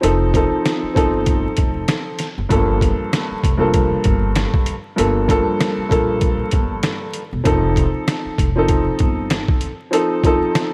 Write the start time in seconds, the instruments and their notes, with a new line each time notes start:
0.01 upright bass F1, upright piano F3 C4 D#4 A4, closed hi-hat
0.34 upright piano F3 C4 D#4 A4, kick, closed hi-hat
0.66 snare, closed hi-hat
0.83 muted upright bass stroke
0.94 upright bass G1, upright piano F3 C4 D#4 A4, kick, closed hi-hat
1.26 kick, closed hi-hat
1.57 upright bass F1, kick, closed hi-hat
1.88 snare, closed hi-hat
2.19 snare, closed hi-hat
2.38 upright bass F#1
2.49 upright bass G1, upright piano G2 F3 A#3 A4, kick, closed hi-hat
2.81 kick, closed hi-hat
3.13 snare, closed hi-hat
3.31 muted upright bass stroke
3.44 upright bass F1, kick, closed hi-hat
3.58 upright piano G2 F3 A#3 A4
3.74 kick, closed hi-hat
4.04 upright bass G1, kick, closed hi-hat
4.36 snare, closed hi-hat
4.54 kick
4.66 closed hi-hat
4.96 upright bass G1, upright piano G2 F3 A#3 A4, closed hi-hat
5.28 upright piano G2 F3 A#3 A4, kick, closed hi-hat
5.61 snare, closed hi-hat
5.78 muted upright bass stroke
5.89 upright bass A#1, upright piano G2 F3 A#3 A4, kick, closed hi-hat
6.21 kick, closed hi-hat
6.51 upright bass G1, kick, closed hi-hat
6.83 snare, closed hi-hat
7.14 closed hi-hat
7.33 upright bass E1
7.44 upright bass F1, upright piano F3 C4 D#4 A4, kick, closed hi-hat
7.76 kick, closed hi-hat
8.08 snare, closed hi-hat
8.26 muted upright bass stroke
8.38 upright bass F1, kick, closed hi-hat
8.56 upright piano F3 C4 D#4 A4
8.68 kick, closed hi-hat
8.99 upright bass G1, kick, closed hi-hat
9.30 snare, closed hi-hat
9.48 kick
9.61 closed hi-hat
9.91 upright piano F3 C4 D#4 A4, closed hi-hat
10.23 upright piano F3 C4 D#4 A4, kick, closed hi-hat
10.55 snare, closed hi-hat